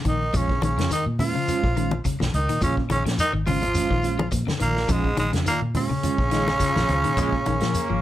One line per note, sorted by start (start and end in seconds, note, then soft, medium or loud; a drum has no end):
0.05 0.31 A#1 medium
0.05 0.23 D#3 medium
0.05 0.38 D#3 medium
0.05 0.38 D#4 medium
0.05 muted clean electric guitar stroke soft
0.05 kick medium
0.05 closed hi-hat medium
0.05 high conga medium
0.05 shekere soft
0.22 muted clean electric guitar stroke soft
0.34 0.60 A#1 loud
0.34 0.64 C#3 medium
0.34 0.52 F3 medium
0.34 0.52 G#3 medium
0.34 0.52 C#4 medium
0.34 0.63 C#4 medium
0.34 0.52 F4 medium
0.34 kick medium
0.34 closed hi-hat medium
0.34 low conga medium
0.34 shekere medium
0.49 kick medium
0.62 0.76 A#1 medium
0.62 0.90 C#3 medium
0.62 0.72 D#3 medium
0.62 0.90 C#4 medium
0.62 muted clean electric guitar stroke soft
0.62 closed hi-hat soft
0.62 high conga medium
0.62 shekere soft
0.77 0.89 F2 medium
0.77 0.86 C#3 medium
0.77 0.91 C#4 soft
0.77 0.91 F4 medium
0.77 snare medium
0.77 closed hi-hat soft
0.91 1.09 D#3 medium
0.91 1.05 D#3 medium
0.91 1.05 D#4 medium
0.91 muted clean electric guitar stroke soft
0.91 closed hi-hat medium
0.91 shekere medium
1.06 1.32 A#2 medium
1.06 muted clean electric guitar stroke soft
1.19 2.02 F3 medium
1.19 1.34 G#3 medium
1.19 1.34 C#4 medium
1.19 2.01 F4 medium
1.19 1.34 F4 medium
1.19 open hi-hat medium
1.19 high conga medium
1.19 low conga medium
1.19 shekere soft
1.35 1.53 C#3 medium
1.35 muted clean electric guitar stroke soft
1.48 1.63 G#3 medium
1.48 1.63 C#4 medium
1.48 1.63 F4 medium
1.48 closed hi-hat medium
1.48 shekere medium
1.64 2.01 A#1 medium
1.64 muted clean electric guitar stroke soft
1.64 kick medium
1.77 1.95 D#3 medium
1.77 1.92 G#3 medium
1.77 1.92 C#4 medium
1.77 1.91 F4 medium
1.77 closed hi-hat medium
1.77 shekere soft
1.91 muted clean electric guitar stroke soft
1.91 high conga medium
2.05 2.15 C#3 medium
2.05 muted fingered electric bass stroke soft
2.05 kick medium
2.05 closed hi-hat medium
2.05 shekere medium
2.20 2.32 A#1 medium
2.20 2.38 F3 medium
2.20 snare medium
2.20 high conga medium
2.33 2.47 C#2 loud
2.33 2.60 D#3 medium
2.33 2.60 D#4 medium
2.33 muted clean electric guitar stroke soft
2.33 closed hi-hat soft
2.33 shekere soft
2.49 2.61 A#2 medium
2.49 2.57 D#3 medium
2.49 muted clean electric guitar stroke soft
2.49 closed hi-hat medium
2.61 2.87 A#2 loud
2.61 2.76 C#3 medium
2.61 2.80 F3 medium
2.61 2.80 C#4 medium
2.61 2.76 C#4 medium
2.61 2.80 F4 medium
2.61 muted clean electric guitar stroke medium
2.61 kick medium
2.61 closed hi-hat medium
2.61 low conga medium
2.61 shekere medium
2.77 kick medium
2.90 3.04 A#1 medium
2.90 3.04 C#3 medium
2.90 3.00 D#3 medium
2.90 3.04 C#4 medium
2.90 muted clean electric guitar stroke soft
2.90 closed hi-hat soft
2.90 high conga medium
2.90 shekere soft
3.05 3.17 A#2 medium
3.05 3.24 F3 medium
3.05 3.17 C#4 soft
3.05 3.17 F4 medium
3.05 snare medium
3.05 closed hi-hat medium
3.18 3.33 D#3 medium
3.18 3.32 D#4 loud
3.18 muted clean electric guitar stroke soft
3.18 closed hi-hat medium
3.18 shekere medium
3.33 3.84 G#1 medium
3.33 3.42 D#3 medium
3.33 muted clean electric guitar stroke soft
3.46 3.57 C#3 medium
3.46 4.29 F3 medium
3.46 3.62 G#3 medium
3.46 3.62 C#4 medium
3.46 4.28 F4 loud
3.46 3.61 F4 medium
3.46 open hi-hat medium
3.46 high conga medium
3.46 low conga medium
3.46 shekere soft
3.62 muted clean electric guitar stroke soft
3.62 closed hi-hat medium
3.62 low conga medium
3.74 3.90 G#3 medium
3.74 3.90 C#4 medium
3.74 3.90 F4 medium
3.74 closed hi-hat medium
3.74 high conga medium
3.74 shekere medium
3.90 4.28 A#1 medium
3.90 4.09 D#3 medium
3.90 muted clean electric guitar stroke soft
3.90 kick medium
4.02 4.19 G#3 medium
4.02 4.19 C#4 medium
4.02 4.18 F4 medium
4.02 closed hi-hat medium
4.02 shekere soft
4.19 4.27 F3 medium
4.19 muted clean electric guitar stroke soft
4.19 high conga loud
4.31 4.46 A#2 medium
4.31 4.42 F3 medium
4.31 kick medium
4.31 closed hi-hat medium
4.31 shekere medium
4.47 4.56 C#3 medium
4.47 snare medium
4.47 high conga medium
4.60 4.86 A#1 medium
4.60 4.91 A#2 medium
4.60 4.78 D#3 medium
4.60 4.93 A#3 medium
4.60 muted clean electric guitar stroke soft
4.60 closed hi-hat medium
4.60 high conga medium
4.60 shekere soft
4.77 muted clean electric guitar stroke soft
4.77 snare soft
4.88 5.15 A#1 loud
4.88 5.18 G#2 medium
4.88 5.07 F3 medium
4.88 5.07 G#3 medium
4.88 5.19 G#3 medium
4.88 5.07 C#4 medium
4.88 5.08 F4 medium
4.88 kick medium
4.88 closed hi-hat medium
4.88 low conga medium
4.88 shekere medium
5.04 kick medium
5.17 5.32 A#1 medium
5.17 5.32 G#2 medium
5.17 5.27 D#3 medium
5.17 5.32 G#3 medium
5.17 muted clean electric guitar stroke soft
5.17 closed hi-hat medium
5.17 high conga medium
5.17 shekere soft
5.33 5.45 F2 medium
5.33 5.41 C#3 medium
5.33 5.46 C#4 soft
5.33 5.46 F4 medium
5.33 snare medium
5.33 closed hi-hat medium
5.46 5.61 A#2 medium
5.46 5.64 D#3 medium
5.46 5.60 A#3 loud
5.46 muted clean electric guitar stroke soft
5.46 closed hi-hat medium
5.46 shekere medium
5.61 5.87 A#2 medium
5.61 muted clean electric guitar stroke soft
5.74 8.02 C#3 loud
5.74 5.90 G#3 medium
5.74 5.89 C#4 medium
5.74 8.02 C#4 loud
5.74 5.89 F4 medium
5.74 open hi-hat medium
5.74 high conga medium
5.74 low conga medium
5.74 shekere soft
5.90 6.08 C#3 medium
5.90 muted clean electric guitar stroke soft
5.90 low conga medium
6.03 6.18 G#3 medium
6.03 6.18 C#4 medium
6.03 6.18 F4 medium
6.03 closed hi-hat medium
6.03 high conga medium
6.03 shekere medium
6.18 6.56 A#1 medium
6.18 muted clean electric guitar stroke soft
6.18 kick medium
6.31 6.50 D#3 medium
6.31 6.47 G#3 medium
6.31 6.58 G#3 medium
6.31 6.47 C#4 medium
6.31 6.46 F4 medium
6.31 snare soft
6.31 closed hi-hat medium
6.31 shekere soft
6.47 muted clean electric guitar stroke soft
6.47 snare soft
6.47 high conga medium
6.60 6.70 C#3 medium
6.60 6.88 F3 medium
6.60 muted fingered electric bass stroke soft
6.60 kick medium
6.60 snare soft
6.60 closed hi-hat medium
6.60 shekere medium
6.76 6.88 A#1 medium
6.76 6.94 F3 medium
6.76 snare medium
6.76 high conga medium
6.88 7.03 C#2 medium
6.88 7.02 F3 medium
6.88 muted clean electric guitar stroke soft
6.88 closed hi-hat soft
6.88 high conga medium
6.88 shekere soft
7.04 7.16 A#2 medium
7.04 7.13 D#3 medium
7.04 muted clean electric guitar stroke medium
7.04 closed hi-hat medium
7.17 7.43 A#2 loud
7.17 7.36 F3 medium
7.17 7.35 G#3 medium
7.17 7.31 G#3 loud
7.17 7.35 C#4 medium
7.17 7.36 F4 loud
7.17 kick medium
7.17 closed hi-hat medium
7.17 low conga medium
7.17 shekere medium
7.32 kick medium
7.45 7.60 A#1 medium
7.45 7.56 D#3 medium
7.45 8.02 A#3 loud
7.45 muted clean electric guitar stroke soft
7.45 closed hi-hat soft
7.45 high conga medium
7.45 shekere soft
7.60 7.73 A#2 medium
7.60 7.80 F3 medium
7.60 7.74 C#4 soft
7.60 7.74 F4 medium
7.60 snare medium
7.60 closed hi-hat soft
7.74 closed hi-hat medium
7.74 shekere medium
7.90 8.02 G#1 medium
7.90 7.98 F3 medium
7.90 muted clean electric guitar stroke soft